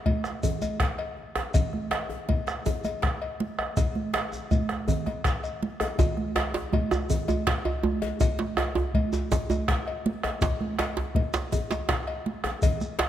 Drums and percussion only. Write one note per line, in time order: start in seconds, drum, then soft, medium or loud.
0.06 bombo low loud
0.06 cowbell medium
0.06 high conga medium
0.24 bombo rim medium
0.24 djembe slap medium
0.24 shekere soft
0.43 cowbell soft
0.43 low conga medium
0.43 djembe bass medium
0.43 shekere medium
0.62 cowbell soft
0.62 djembe slap soft
0.62 high conga medium
0.62 djembe tone medium
0.62 shekere soft
0.80 bombo rim medium
0.80 bombo low medium
0.80 djembe slap medium
0.98 bombo rim soft
0.98 cowbell medium
0.98 djembe slap soft
1.17 djembe slap soft
1.35 bombo rim medium
1.35 djembe slap medium
1.35 djembe tone medium
1.54 bombo low medium
1.54 cowbell medium
1.54 djembe slap soft
1.54 djembe bass medium
1.54 low conga medium
1.54 shekere medium
1.73 bombo rim soft
1.73 high conga medium
1.91 bombo rim loud
1.91 cowbell soft
1.91 djembe slap medium
2.10 bombo rim soft
2.10 djembe tone medium
2.29 bombo low loud
2.29 cowbell medium
2.29 high conga medium
2.47 bombo rim medium
2.47 djembe slap medium
2.47 shekere soft
2.66 cowbell soft
2.66 djembe bass medium
2.66 low conga medium
2.66 shekere soft
2.84 cowbell soft
2.84 djembe slap soft
2.84 high conga medium
2.84 djembe tone medium
2.84 shekere soft
3.02 bombo rim medium
3.02 bombo low medium
3.02 djembe slap medium
3.02 high conga soft
3.22 bombo rim soft
3.22 cowbell soft
3.22 djembe slap soft
3.40 djembe slap soft
3.40 high conga medium
3.59 bombo rim medium
3.59 cowbell soft
3.59 djembe tone soft
3.77 bombo rim soft
3.77 bombo low loud
3.77 cowbell medium
3.77 djembe slap soft
3.77 high conga soft
3.77 djembe bass medium
3.77 low conga medium
3.77 shekere medium
3.95 djembe slap soft
3.95 high conga medium
4.14 bombo rim loud
4.14 cowbell soft
4.14 djembe slap medium
4.33 djembe tone medium
4.33 shekere soft
4.51 bombo low loud
4.51 cowbell soft
4.51 high conga medium
4.51 shekere soft
4.69 bombo rim medium
4.69 djembe slap medium
4.88 cowbell soft
4.88 djembe bass medium
4.88 low conga medium
4.88 shekere soft
5.06 bombo rim soft
5.06 cowbell soft
5.06 djembe slap soft
5.06 djembe tone medium
5.06 high conga medium
5.24 bombo rim medium
5.24 bombo low medium
5.24 djembe slap medium
5.24 shekere soft
5.44 cowbell soft
5.44 shekere soft
5.63 high conga medium
5.80 bombo rim medium
5.80 cowbell soft
5.80 djembe slap medium
5.80 djembe tone medium
5.80 high conga soft
5.98 bombo low loud
5.98 cowbell medium
5.98 djembe slap soft
5.98 djembe tone loud
5.98 low conga medium
5.98 djembe bass medium
5.98 shekere medium
6.17 bombo rim soft
6.17 high conga medium
6.36 bombo rim medium
6.36 cowbell medium
6.36 djembe slap medium
6.36 djembe tone medium
6.54 bombo rim soft
6.54 djembe slap medium
6.54 djembe tone medium
6.73 bombo low loud
6.73 cowbell medium
6.73 high conga medium
6.73 djembe tone medium
6.91 bombo rim medium
6.91 djembe slap medium
6.91 djembe tone loud
6.91 shekere soft
7.10 cowbell soft
7.10 low conga medium
7.10 djembe bass medium
7.10 shekere medium
7.28 cowbell medium
7.28 djembe slap soft
7.28 djembe tone medium
7.28 high conga medium
7.28 djembe tone medium
7.28 shekere soft
7.47 bombo rim medium
7.47 bombo low medium
7.47 djembe slap medium
7.65 bombo rim soft
7.65 cowbell medium
7.65 djembe slap soft
7.65 djembe tone medium
7.83 djembe slap soft
7.83 djembe tone loud
7.83 high conga medium
8.02 cowbell medium
8.02 djembe slap medium
8.02 djembe tone medium
8.20 bombo low loud
8.20 cowbell medium
8.20 djembe slap soft
8.20 djembe tone medium
8.20 low conga medium
8.20 djembe bass medium
8.20 shekere medium
8.39 bombo rim soft
8.39 djembe slap medium
8.39 high conga medium
8.57 bombo rim loud
8.57 cowbell medium
8.57 djembe slap medium
8.57 djembe tone medium
8.75 bombo rim soft
8.75 djembe tone loud
8.75 djembe tone medium
8.94 bombo low medium
8.94 cowbell medium
8.94 high conga medium
9.13 djembe slap medium
9.13 djembe tone medium
9.13 shekere soft
9.32 cowbell soft
9.32 djembe slap medium
9.32 djembe bass medium
9.32 low conga medium
9.32 shekere medium
9.50 cowbell medium
9.50 djembe slap soft
9.50 djembe tone medium
9.50 high conga medium
9.50 shekere soft
9.68 bombo rim medium
9.68 bombo low medium
9.68 djembe slap medium
9.68 high conga soft
9.86 bombo rim soft
9.86 cowbell soft
9.86 djembe slap soft
10.06 djembe slap soft
10.06 high conga medium
10.23 bombo rim medium
10.23 cowbell soft
10.23 djembe slap medium
10.23 djembe tone medium
10.41 bombo low loud
10.41 cowbell medium
10.41 djembe slap loud
10.41 djembe slap soft
10.41 low conga medium
10.41 djembe bass medium
10.41 shekere medium
10.60 bombo rim soft
10.60 high conga medium
10.79 bombo rim medium
10.79 cowbell soft
10.79 djembe slap medium
10.97 bombo rim soft
10.97 djembe slap medium
10.97 djembe tone medium
11.15 bombo low loud
11.15 cowbell medium
11.15 high conga medium
11.34 bombo rim medium
11.34 djembe slap loud
11.34 djembe slap medium
11.34 shekere soft
11.52 cowbell soft
11.52 low conga medium
11.52 djembe bass medium
11.52 shekere medium
11.71 cowbell medium
11.71 djembe slap medium
11.71 djembe slap soft
11.71 djembe tone medium
11.71 high conga medium
11.71 shekere soft
11.89 bombo rim medium
11.89 bombo low medium
11.89 djembe slap medium
11.89 high conga soft
12.07 bombo rim soft
12.07 cowbell medium
12.07 djembe slap soft
12.26 djembe slap soft
12.26 high conga medium
12.44 bombo rim medium
12.44 djembe slap medium
12.44 djembe tone medium
12.62 bombo low loud
12.62 cowbell medium
12.62 djembe bass medium
12.62 low conga medium
12.62 shekere medium
12.81 bombo rim soft
12.81 high conga medium
12.81 shekere soft
12.99 bombo rim loud
12.99 cowbell soft
12.99 djembe slap medium
12.99 djembe slap loud
12.99 high conga soft